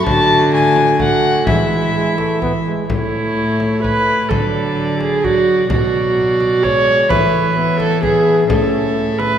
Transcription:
0.05 D3 A3 F#4 A5, frame drum
0.53 G#5
0.76 frame drum
0.99 A3 F#4 F#5, frame drum
1.47 E3 G#3 E4 E5, frame drum
1.94 G#3
2.17 A3, frame drum
2.42 B3, frame drum
2.66 G#3
2.88 A2 A3 E4 C#5, frame drum
3.60 frame drum
3.83 B4, frame drum
4.29 D3 F#3 A4 D5, frame drum
5.00 G#4, frame drum
5.23 F#3 F#4 D5, frame drum
5.70 B2 F#3 F#4 D5, frame drum
6.40 frame drum
6.62 G#3 C#5, frame drum
7.09 E3 A3 B4 E5, frame drum
7.55 B3 E5
7.80 A4, frame drum
8.01 B3 G#4 E5, frame drum
8.47 A2 C#4 A4 E5, frame drum
9.19 B4, frame drum

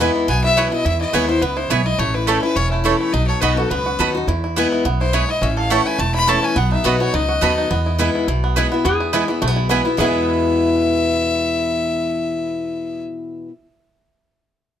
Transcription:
Already playing: E2 E4
0.00 E3 G#3 B3 E4 B4 G#5
0.16 E4
0.28 B1 B2 B3 G#5
0.44 E4 E5
0.57 E3 G#3 B3 E4 B4 C#5 G#5
0.72 B3 E4 D#5
0.85 E2 E4 E5
1.01 E4 D#5
1.13 D#2 E3 G#3 B3 E4 B4 C#5 G#5
1.29 B3 E4 C5
1.41 C#2 F#2 B3 B4
1.57 E4 C5
1.70 B1 G#2 B3 E4 B4 C#5 G#5
1.86 E4 D#5
1.99 A1 A2 A3 C#5
2.14 E4 B4
2.27 E3 A3 C#4 E4 A4 C#5 A5
2.42 C#4 E4 B4
2.56 E1 E2 C#4 C#5
2.71 A3 E4
2.84 E3 A3 C#4 E4 A4 C#5 A5
3.00 A3 C#5
3.13 B1 B2 D#4 D#5
3.28 A4 C#5
3.41 B1 F#3 B3 D#4 F#4 B4 D#5 B5
3.57 D#4 F#4 A4
3.70 C#2 F#2 B3 B4
3.86 F#4
3.99 D#2 F#3 B3 D#4 F#4 A4 D#5 B5
4.14 D#4 F#4
4.27 E2 E4
4.44 E4
4.56 E3 G#3 B3 E4 B4 G#5
4.72 E4
4.85 B1 F#2 B3
5.01 E4 C5
5.13 G#2 B3 E4 B4 C#5 G#5
5.29 E4 D#5
5.41 A1 A2 C#4 E5
5.57 A4 F5
5.70 E3 A3 C#4 E4 C#5 F#5 A5
5.86 E4 G#5
5.99 E1 E2 A3 A5
6.14 E4 B5
6.27 E3 A3 C#4 E4 A4 C#5 A5
6.43 C#4 G#5
6.56 B1 B2 B3 F#5
6.72 D#4 E5
6.84 B1 F#3 B3 D#4 F#4 D#5 B5
7.00 B3 D#4 F#4 C#5
7.14 C#2 F#2 D#4 D#5
7.29 F#4
7.41 D#2 F#3 B3 D#4 F#4 A4 D#5 B5
7.58 D#4
7.71 E2 B3
7.86 E4
7.98 E3 G#3 B3 E4 B4 G#5
8.15 E4
8.28 B1 B2 E4
8.44 B3
8.56 E3 G#3 B3 E4 B4 G#5
8.72 B3 E4
8.85 E2 B3 G#4
9.00 E4
9.13 E3 G#3 B3 E4 B4 G#5
9.28 E3 B3 E4
9.42 B1 B2 A3
9.47 B3
9.56 E4
9.69 E3 G#3 B3 E4 B4 G#5
9.85 B3 E4
9.97 E2 B2 E3 G#3 B3 E4 G#4 B4 E5 G#5
10.02 E4 G#4

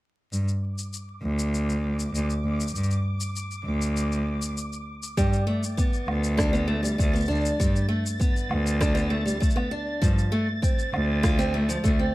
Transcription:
0.32 G2 D6, shaker
0.48 shaker
0.78 shaker
0.93 shaker
1.23 D2
1.39 shaker
1.54 shaker
1.70 shaker
2.00 shaker
2.14 D2, shaker
2.30 shaker
2.45 D2
2.60 shaker
2.68 shaker
2.75 G2, shaker
2.83 shaker
2.91 shaker
3.21 shaker
3.36 shaker
3.51 shaker
3.65 D2
3.82 shaker
3.97 shaker
4.12 shaker
4.42 shaker
4.57 shaker
4.73 shaker
5.03 shaker
5.17 G2 G3 A6, kick, shaker
5.33 shaker
5.47 A3
5.63 shaker
5.77 B3, kick, shaker
5.93 shaker
6.08 D2, low woodblock
6.24 shaker
6.37 D4, kick, cross-stick, shaker
6.53 B3, shaker
6.68 A3
6.83 G3, shaker
6.98 D2 A3, kick, shaker
7.13 B3, shaker
7.21 shaker
7.25 D4, shaker
7.30 D2, shaker
7.35 shaker
7.41 shaker
7.45 shaker
7.60 G2 G3, kick, shaker
7.76 shaker
7.88 A3
8.06 shaker
8.19 B3, kick, shaker
8.36 shaker
8.51 D2, low woodblock
8.67 shaker
8.81 D4, kick, cross-stick, shaker
8.95 B3, shaker
9.10 A3
9.26 G3, shaker
9.40 A3, kick, shaker
9.50 shaker
9.56 B3, low woodblock
9.71 D4
10.02 G2 F3, kick, shaker
10.18 shaker
10.32 A3
10.62 C4, kick, shaker
10.79 shaker
10.93 D2, low woodblock
11.23 F4, kick, cross-stick, shaker
11.39 C4, shaker
11.54 A3
11.69 F3, shaker
11.84 D2 A3, kick, shaker
11.99 C4

